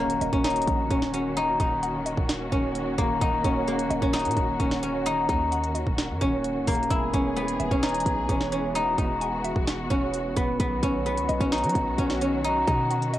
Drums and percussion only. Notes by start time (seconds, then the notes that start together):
0.10 closed hi-hat
0.21 closed hi-hat
0.33 kick
0.44 snare, closed hi-hat
0.50 closed hi-hat
0.56 closed hi-hat
0.62 closed hi-hat
0.67 kick, closed hi-hat
0.91 kick, closed hi-hat
1.02 snare
1.14 closed hi-hat
1.37 closed hi-hat
1.60 kick, closed hi-hat
1.83 closed hi-hat
2.06 closed hi-hat
2.17 kick
2.29 snare, closed hi-hat
2.52 kick
2.75 closed hi-hat
2.98 kick, closed hi-hat
3.21 kick, closed hi-hat
3.44 kick, closed hi-hat
3.67 closed hi-hat
3.79 closed hi-hat
3.91 closed hi-hat
4.02 kick
4.14 snare, closed hi-hat
4.19 closed hi-hat
4.25 closed hi-hat
4.31 closed hi-hat
4.37 kick, closed hi-hat
4.60 kick, closed hi-hat
4.71 snare
4.83 closed hi-hat
5.06 closed hi-hat
5.29 kick, closed hi-hat
5.52 closed hi-hat
5.64 closed hi-hat
5.75 closed hi-hat
5.87 kick
5.98 snare, closed hi-hat
6.21 kick
6.44 closed hi-hat
6.67 kick, closed hi-hat, open hi-hat
6.75 closed hi-hat
6.83 closed hi-hat
6.91 kick, closed hi-hat
7.14 kick, closed hi-hat
7.37 closed hi-hat
7.48 closed hi-hat
7.60 closed hi-hat
7.71 kick
7.83 snare, closed hi-hat
7.89 closed hi-hat
7.94 closed hi-hat
8.00 closed hi-hat
8.06 kick, closed hi-hat
8.29 kick, closed hi-hat
8.41 snare
8.52 closed hi-hat
8.75 closed hi-hat
8.98 kick, closed hi-hat
9.21 closed hi-hat
9.44 closed hi-hat
9.56 kick
9.67 snare, closed hi-hat
9.91 kick
10.14 closed hi-hat
10.37 kick, closed hi-hat
10.60 kick, closed hi-hat
10.83 kick, closed hi-hat
11.06 closed hi-hat
11.17 closed hi-hat
11.29 closed hi-hat
11.40 kick
11.52 snare, closed hi-hat
11.58 closed hi-hat
11.64 closed hi-hat
11.69 closed hi-hat
11.75 kick, closed hi-hat
11.98 kick, closed hi-hat
12.10 snare
12.21 closed hi-hat
12.44 closed hi-hat
12.67 kick, closed hi-hat
12.91 closed hi-hat
13.02 closed hi-hat
13.14 closed hi-hat